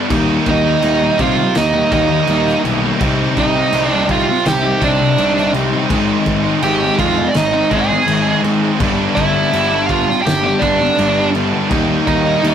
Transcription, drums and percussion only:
0.10 kick loud
0.10 crash medium
0.46 kick medium
0.46 crash medium
0.82 crash medium
1.19 kick medium
1.19 crash medium
1.55 snare loud
1.55 crash medium
1.92 kick medium
1.92 crash medium
2.27 crash medium
2.47 snare soft
2.65 crash medium
3.01 kick loud
3.01 crash medium
3.37 kick medium
3.37 crash medium
3.73 crash medium
4.09 kick medium
4.09 crash medium
4.46 snare loud
4.46 crash medium
4.82 kick medium
4.82 crash medium
5.18 crash medium
5.37 snare soft
5.54 crash medium
5.90 kick loud
5.90 crash medium
6.26 kick medium
6.26 crash medium
6.62 crash medium
6.99 kick medium
6.99 crash medium
7.34 snare loud
7.34 crash medium
7.71 kick medium
7.71 crash medium
8.08 crash medium
8.44 crash medium
8.80 kick loud
8.80 crash medium
9.17 kick medium
9.17 crash medium
9.53 crash medium
9.89 kick medium
9.89 crash medium
10.26 snare loud
10.26 crash medium
10.62 kick medium
10.62 crash medium
10.99 crash medium
11.35 crash medium
11.71 kick loud
11.71 crash medium
12.07 kick medium
12.07 crash medium
12.44 crash medium

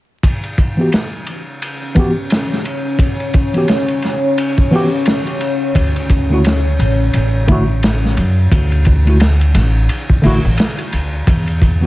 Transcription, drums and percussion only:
0.23 kick loud
0.23 ride medium
0.23 shaker soft
0.43 ride soft
0.43 shaker soft
0.58 kick medium
0.58 ride medium
0.58 shaker medium
0.78 shaker soft
0.92 snare loud
0.92 ride medium
0.92 shaker soft
1.14 shaker soft
1.26 ride medium
1.26 shaker medium
1.48 shaker soft
1.62 ride medium
1.62 shaker soft
1.84 shaker soft
1.96 kick medium
1.96 ride medium
1.96 shaker medium
2.17 shaker soft
2.30 snare loud
2.30 ride medium
2.30 shaker soft
2.53 snare soft
2.53 shaker soft
2.65 ride medium
2.65 shaker medium
2.87 shaker soft
2.99 kick loud
2.99 ride medium
2.99 shaker soft
3.20 ride soft
3.20 shaker soft
3.33 kick medium
3.33 ride medium
3.33 shaker medium
3.54 ride soft
3.54 shaker soft
3.68 snare loud
3.68 ride medium
3.68 shaker soft
3.88 ride soft
3.88 shaker soft
4.02 snare soft
4.02 ride soft
4.02 shaker medium
4.25 shaker soft
4.38 ride medium
4.38 shaker soft
4.58 kick medium
4.58 shaker soft
4.72 open hi-hat medium
4.72 shaker medium
4.94 shaker soft
5.06 snare loud
5.06 ride medium
5.06 shaker soft
5.27 ride soft
5.27 shaker soft
5.41 ride medium
5.41 shaker medium
5.62 shaker soft
5.75 kick medium
5.75 ride medium
5.75 shaker medium
5.96 ride soft
5.96 shaker soft
6.10 kick medium
6.10 ride medium
6.10 shaker medium
6.31 shaker soft
6.44 snare loud
6.44 ride medium
6.44 shaker medium
6.65 shaker soft
6.78 ride medium
6.78 shaker medium
6.99 shaker soft
7.13 ride medium
7.13 shaker soft
7.34 shaker soft
7.46 kick medium
7.46 ride medium
7.46 shaker medium
7.68 shaker soft
7.82 snare loud
7.82 ride medium
7.82 shaker medium
8.03 snare soft
8.03 shaker soft
8.17 ride medium
8.17 shaker medium
8.38 shaker soft
8.52 kick loud
8.52 ride medium
8.52 shaker medium
8.71 ride soft
8.71 shaker soft
8.85 kick medium
8.85 ride medium
8.85 shaker medium
9.06 ride soft
9.06 shaker soft
9.20 snare loud
9.20 ride medium
9.20 shaker soft
9.41 ride soft
9.41 shaker soft
9.55 snare soft
9.55 ride medium
9.55 shaker medium
9.75 shaker soft
9.88 ride medium
9.88 shaker medium
10.09 kick medium
10.09 shaker soft
10.23 open hi-hat medium
10.23 shaker loud
10.44 shaker soft
10.57 snare loud
10.57 ride medium
10.57 shaker soft
10.78 ride soft
10.78 shaker soft
10.93 ride medium
10.93 shaker medium
11.13 shaker soft
11.26 kick loud
11.26 ride medium
11.26 shaker medium
11.47 ride soft
11.47 shaker soft
11.61 kick medium
11.61 ride medium
11.61 shaker medium
11.82 shaker soft

